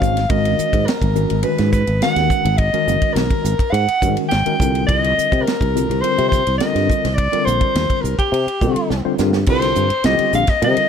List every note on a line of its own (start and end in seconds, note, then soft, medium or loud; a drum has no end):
0.00 0.27 G#1 medium
0.00 0.19 D#3 medium
0.00 0.19 G#3 medium
0.00 0.19 C#4 medium
0.00 0.19 F#4 medium
0.00 0.20 C5 medium
0.00 0.31 F5 medium
0.00 kick medium
0.00 hi-hat pedal medium
0.17 snare soft
0.17 ride medium
0.30 0.54 G#1 medium
0.30 0.85 D#3 medium
0.30 0.85 G#3 medium
0.30 0.85 C#4 medium
0.30 0.85 F#4 medium
0.30 0.85 A#4 medium
0.30 0.87 D#5 medium
0.30 kick medium
0.30 ride medium
0.45 ride medium
0.59 hi-hat pedal medium
0.73 0.85 G#2 medium
0.73 kick medium
0.73 ride medium
0.86 1.45 A#4 medium
0.86 snare loud
0.86 ride medium
1.02 1.26 G#1 medium
1.02 kick medium
1.02 ride medium
1.15 1.34 D#3 medium
1.15 1.34 G#3 soft
1.15 1.34 C#4 medium
1.15 1.34 F#4 medium
1.15 1.34 A#4 medium
1.15 hi-hat pedal medium
1.30 1.42 G#1 medium
1.30 ride medium
1.43 1.81 D#3 medium
1.43 1.81 G#3 medium
1.43 1.81 C#4 medium
1.43 1.81 F#4 medium
1.43 1.81 B4 medium
1.43 1.71 B4 medium
1.43 ride medium
1.58 1.83 G#2 medium
1.58 snare soft
1.58 ride medium
1.72 1.99 B4 medium
1.72 kick medium
1.72 snare soft
1.72 hi-hat pedal medium
1.87 1.99 G#1 medium
1.87 ride medium
2.02 2.48 D#3 medium
2.02 2.48 G#3 medium
2.02 2.48 C#4 medium
2.02 2.48 F#4 medium
2.02 2.48 A#4 medium
2.02 2.59 F#5 medium
2.02 snare medium
2.02 ride medium
2.16 2.28 D#2 medium
2.16 snare soft
2.16 ride medium
2.30 muted fretless electric bass stroke soft
2.30 kick medium
2.30 hi-hat pedal medium
2.45 2.69 G#1 medium
2.45 ride medium
2.57 3.15 D#5 medium
2.57 kick medium
2.57 ride medium
2.74 3.48 D#3 medium
2.74 3.48 G#3 medium
2.74 3.48 C#4 medium
2.74 3.48 F#4 medium
2.74 3.48 A#4 medium
2.74 ride medium
2.88 3.00 F#1 medium
2.88 hi-hat pedal medium
3.02 kick medium
3.02 ride medium
3.13 3.28 B1 medium
3.13 3.73 A#4 medium
3.13 snare medium
3.13 ride medium
3.30 muted fretless electric bass stroke soft
3.30 kick medium
3.30 ride medium
3.44 3.57 G#1 medium
3.44 hi-hat pedal medium
3.59 muted fretless electric bass stroke soft
3.59 kick medium
3.59 ride medium
3.71 3.85 G#2 medium
3.71 4.16 F#5 medium
3.71 ride medium
3.88 muted fretless electric bass stroke soft
3.88 ride medium
4.02 4.14 G#2 medium
4.02 4.30 D#3 medium
4.02 4.30 G#3 medium
4.02 4.31 C#4 medium
4.02 4.30 F#4 medium
4.02 4.31 A#4 medium
4.02 kick medium
4.02 hi-hat pedal medium
4.17 muted fretless electric bass stroke soft
4.17 ride medium
4.29 4.44 G#1 medium
4.29 4.83 G5 medium
4.29 snare medium
4.29 ride medium
4.46 4.55 D#3 medium
4.46 4.55 G#3 medium
4.46 4.55 C#4 medium
4.46 4.55 F#4 medium
4.46 4.55 A#4 medium
4.46 muted fretless electric bass stroke soft
4.46 ride medium
4.59 4.84 C2 medium
4.59 5.52 D3 medium
4.59 5.52 G3 medium
4.59 5.52 C4 medium
4.59 5.52 F4 medium
4.59 5.52 A#4 medium
4.59 kick medium
4.59 hi-hat pedal medium
4.75 ride medium
4.87 5.13 C2 medium
4.87 5.44 D#5 medium
4.87 kick loud
4.87 ride medium
5.04 ride medium
5.18 muted fretless electric bass stroke soft
5.18 hi-hat pedal medium
5.32 5.44 C3 medium
5.32 kick medium
5.32 ride medium
5.42 6.03 A#4 medium
5.47 snare loud
5.47 ride medium
5.61 5.85 C2 medium
5.61 kick medium
5.61 ride medium
5.75 5.93 D3 medium
5.75 5.93 G3 medium
5.75 5.94 C4 medium
5.75 5.94 F4 medium
5.75 5.94 A#4 medium
5.75 hi-hat pedal medium
5.89 6.01 C2 medium
5.89 ride medium
6.01 6.41 D3 medium
6.01 6.41 G3 medium
6.01 6.41 C4 medium
6.01 6.41 F4 medium
6.01 6.41 A#4 medium
6.01 6.28 C5 medium
6.01 ride medium
6.18 6.42 C3 medium
6.18 ride soft
6.29 6.57 C5 medium
6.29 kick medium
6.29 hi-hat pedal medium
6.33 snare soft
6.47 6.59 C2 medium
6.47 ride medium
6.58 7.07 D3 medium
6.58 7.08 G3 medium
6.58 7.08 C4 medium
6.58 7.07 F4 medium
6.58 7.08 A#4 medium
6.58 7.16 D#5 medium
6.58 snare medium
6.58 ride medium
6.75 6.87 G2 medium
6.75 snare soft
6.75 ride medium
6.90 muted fretless electric bass stroke soft
6.90 kick medium
6.90 hi-hat pedal medium
7.05 7.28 C2 medium
7.05 snare soft
7.05 ride medium
7.15 7.46 D5 medium
7.15 kick medium
7.15 ride medium
7.32 8.07 D3 medium
7.32 8.07 G3 medium
7.32 8.07 C4 medium
7.32 8.07 F4 medium
7.32 8.07 A#4 medium
7.32 muted fretless electric bass stroke soft
7.32 ride medium
7.45 7.59 A#1 medium
7.45 8.03 C5 medium
7.45 hi-hat pedal medium
7.61 muted fretless electric bass stroke soft
7.61 kick medium
7.61 ride medium
7.75 7.88 D#2 medium
7.75 snare medium
7.75 ride medium
7.90 kick medium
7.90 ride medium
8.01 8.16 C2 medium
8.01 8.17 A#4 medium
8.01 hi-hat pedal medium
8.18 9.01 G4 medium
8.18 kick medium
8.18 ride medium
8.32 8.45 C3 medium
8.32 ride medium
8.47 muted fretless electric bass stroke soft
8.47 ride medium
8.61 8.74 C3 medium
8.61 8.90 D3 medium
8.61 8.90 G3 medium
8.61 8.90 C4 medium
8.61 8.90 F4 medium
8.61 8.90 A4 medium
8.61 kick medium
8.61 hi-hat pedal medium
8.76 muted fretless electric bass stroke soft
8.76 ride medium
8.90 9.03 C2 medium
8.90 snare medium
9.05 9.15 D3 medium
9.05 9.14 G3 medium
9.05 9.14 C4 medium
9.05 9.14 F4 medium
9.05 9.14 C5 loud
9.18 9.43 G2 medium
9.18 9.38 D3 medium
9.18 9.38 G3 medium
9.18 9.38 C4 medium
9.18 9.38 F4 medium
9.18 9.38 A#4 medium
9.18 snare medium
9.18 hi-hat pedal medium
9.33 snare medium
9.46 9.72 C2 medium
9.46 9.86 D3 medium
9.46 9.86 G3 medium
9.46 9.86 C4 medium
9.46 9.86 F4 medium
9.46 9.86 A#4 medium
9.46 10.03 C5 medium
9.46 kick loud
9.46 crash medium
9.62 snare soft
9.62 ride medium
9.75 9.89 G2 medium
9.75 hi-hat pedal medium
9.90 muted fretless electric bass stroke soft
9.90 ride medium
10.04 10.17 C2 medium
10.04 10.43 D3 medium
10.04 10.43 G3 medium
10.04 10.43 C4 medium
10.04 10.43 F4 medium
10.04 10.43 G4 medium
10.04 10.32 D#5 medium
10.04 snare loud
10.04 ride medium
10.19 muted fretless electric bass stroke soft
10.19 ride medium
10.33 10.46 A#1 medium
10.33 10.51 F5 medium
10.33 hi-hat pedal medium
10.47 10.63 D#5 medium
10.47 muted fretless electric bass stroke soft
10.47 kick medium
10.47 snare soft
10.47 ride medium
10.62 10.75 C3 loud
10.62 10.89 D3 medium
10.62 10.89 G3 medium
10.62 10.89 C4 medium
10.62 10.89 F4 medium
10.62 10.89 A#4 medium
10.62 10.89 D#5 medium
10.62 ride medium
10.77 muted fretless electric bass stroke soft
10.77 ride medium